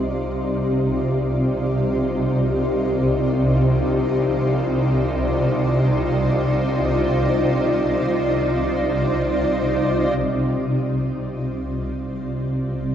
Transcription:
Already playing: synth drone C2 C3, ambient pad D#4 F4 C5 D5
10.19 synth drone C2 C3

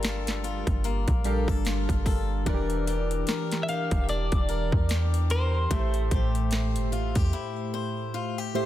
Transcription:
Already playing: 808-style bass G1, synth keys G3 D4 G4 A#4 F5, steel-string acoustic guitar G3 F4, clean electric guitar A#4
0.03 steel-string acoustic guitar A4, snare, closed hi-hat
0.27 snare, closed hi-hat
0.44 steel-string acoustic guitar F4, closed hi-hat
0.67 808-style bass G1, kick, closed hi-hat
0.84 steel-string acoustic guitar A#3, closed hi-hat
1.08 808-style bass A#1, kick, closed hi-hat
1.24 synth keys G3 D4 A4 A#4 F5, steel-string acoustic guitar G4, closed hi-hat
1.48 808-style bass G1, steel-string acoustic guitar A4, kick
1.65 steel-string acoustic guitar F4, snare, closed hi-hat
1.89 808-style bass G1, kick, closed hi-hat
2.06 steel-string acoustic guitar A4, kick, open hi-hat
2.45 808-style bass E1, synth keys E3 D4 F4 A#4 D5, steel-string acoustic guitar E3 A#4, kick, closed hi-hat
2.54 synth keys G4
2.70 closed hi-hat
2.87 steel-string acoustic guitar G4, closed hi-hat
3.11 closed hi-hat
3.27 steel-string acoustic guitar A#4, snare, closed hi-hat
3.52 snare, closed hi-hat
3.63 clean electric guitar E5
3.68 steel-string acoustic guitar G4, clean electric guitar F5, closed hi-hat
3.91 808-style bass E1, kick, closed hi-hat
4.09 steel-string acoustic guitar D4, clean electric guitar D5, closed hi-hat
4.32 808-style bass E1, kick, closed hi-hat
4.49 steel-string acoustic guitar A#4, closed hi-hat
4.72 808-style bass E2, kick
4.89 steel-string acoustic guitar G4, snare, closed hi-hat
5.14 closed hi-hat
5.30 steel-string acoustic guitar A#4, clean electric guitar C5, closed hi-hat
5.70 808-style bass A1, synth keys A2 A3 G4 A#4 E5, steel-string acoustic guitar A3 C5, kick, closed hi-hat
5.79 synth keys C5
5.94 closed hi-hat
6.11 808-style bass A1, steel-string acoustic guitar G4, kick, closed hi-hat
6.35 closed hi-hat
6.51 steel-string acoustic guitar C5, snare, closed hi-hat
6.75 808-style bass G1, closed hi-hat
6.92 808-style bass A1, steel-string acoustic guitar F4, closed hi-hat
7.15 808-style bass E2, steel-string acoustic guitar G4, kick, closed hi-hat
7.33 steel-string acoustic guitar E4
7.74 steel-string acoustic guitar C5
8.14 steel-string acoustic guitar F4
8.38 steel-string acoustic guitar G4
8.54 synth keys A2 A3 G4 C5 E5, steel-string acoustic guitar C5

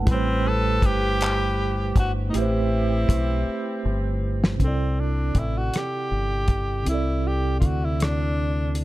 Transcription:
0.02 tine electric piano A3 E4
0.07 fingered electric bass A1, tine electric piano G3, horn section E4 G4 B4, kick, closed hi-hat
0.11 tenor saxophone C4, tine electric piano B4 C5
0.49 tenor saxophone A4
0.82 fingered electric bass G1, tenor saxophone G4, kick, closed hi-hat
1.21 clap, closed hi-hat
1.96 fingered electric bass G1, tenor saxophone F#4, kick, closed hi-hat
2.29 tine electric piano A3 E4, tenor saxophone D#4, horn section G4
2.33 fingered electric bass A1, horn section C4 E4, tenor saxophone E4, tine electric piano G4, closed hi-hat
2.38 tine electric piano B4 C5
3.09 fingered electric bass B1, kick, closed hi-hat
3.85 fingered electric bass G1
4.44 snare
4.55 tine electric piano C3 C4
4.60 fingered electric bass C2, tenor saxophone C4, tine electric piano D4, kick, closed hi-hat
4.64 tine electric piano E4 A4 D5
5.00 tenor saxophone D4
5.35 fingered electric bass A1, tenor saxophone E4, kick, closed hi-hat
5.58 tenor saxophone F#4
5.74 tenor saxophone G4, cross-stick, closed hi-hat
6.11 fingered electric bass G1
6.48 kick, closed hi-hat
6.82 tine electric piano C3 C4, closed hi-hat
6.87 fingered electric bass C2, tine electric piano E4, tenor saxophone E4
6.91 tine electric piano A4 D5
7.27 tenor saxophone G4
7.60 fingered electric bass D2, tenor saxophone F4, kick, closed hi-hat
7.66 tenor saxophone F#4
7.85 tenor saxophone E4
8.00 tenor saxophone D4, cross-stick, closed hi-hat
8.75 closed hi-hat

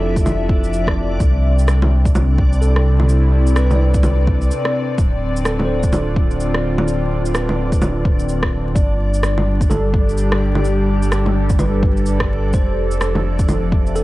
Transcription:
Already playing: sub bass F1, analog synth pad F3 C4 A4 E5, synth texture D4 D5, tine electric piano E4 F4 A4
0.16 kick, shaker
0.26 low bongo, shaker
0.49 kick
0.64 shaker
0.73 shaker
0.87 kick, cross-stick
1.19 sub bass C2, analog synth pad C3, kick, shaker
1.59 shaker
1.68 cross-stick, shaker
1.82 low bongo
2.05 kick, shaker
2.13 analog synth pad E4 D5, low bongo, shaker
2.38 kick
2.53 shaker
2.61 tine electric piano A4, shaker
2.76 cross-stick
3.00 low bongo
3.09 shaker
3.47 shaker
3.56 tine electric piano B4, cross-stick, shaker
3.71 low bongo, shaker
3.75 tine electric piano D5
3.94 kick, shaker
4.03 low bongo, shaker
4.27 kick
4.41 shaker
4.51 shaker
4.65 cross-stick
4.98 sub bass D1, analog synth pad D3, synth texture D4 D5, kick, shaker
5.15 analog synth pad F4
5.36 shaker
5.45 tine electric piano A4, cross-stick, shaker
5.59 low bongo
5.65 tine electric piano C5
5.79 tine electric piano D5, shaker
5.83 kick
5.93 low bongo, shaker
6.16 kick
6.31 shaker
6.40 shaker
6.54 cross-stick
6.78 low bongo
6.88 shaker
7.25 shaker
7.34 tine electric piano B4, cross-stick, shaker
7.49 low bongo
7.72 kick, shaker
7.82 low bongo, shaker
8.05 kick
8.19 shaker
8.29 shaker
8.43 kick, cross-stick
8.75 sub bass G1, analog synth pad G3, tine electric piano D5, kick, shaker
8.84 analog synth pad D4
9.14 shaker
9.23 analog synth pad G4, cross-stick, shaker
9.38 low bongo
9.61 kick, shaker
9.70 tine electric piano A4, low bongo, shaker
9.79 analog synth pad A4
9.94 kick
10.09 shaker
10.18 shaker
10.32 cross-stick
10.55 low bongo
10.65 shaker
11.03 shaker
11.12 cross-stick, shaker
11.26 low bongo
11.50 kick, shaker
11.59 tine electric piano B4, low bongo, shaker
11.83 kick
11.97 shaker
12.06 shaker
12.20 kick, cross-stick
12.53 sub bass F1, analog synth pad F3, tine electric piano C5, kick, shaker
12.79 analog synth pad C4
12.91 shaker
13.01 cross-stick, shaker
13.15 analog synth pad E5, low bongo
13.39 kick, shaker
13.49 low bongo, shaker
13.72 kick
13.86 shaker
13.96 tine electric piano A4, shaker

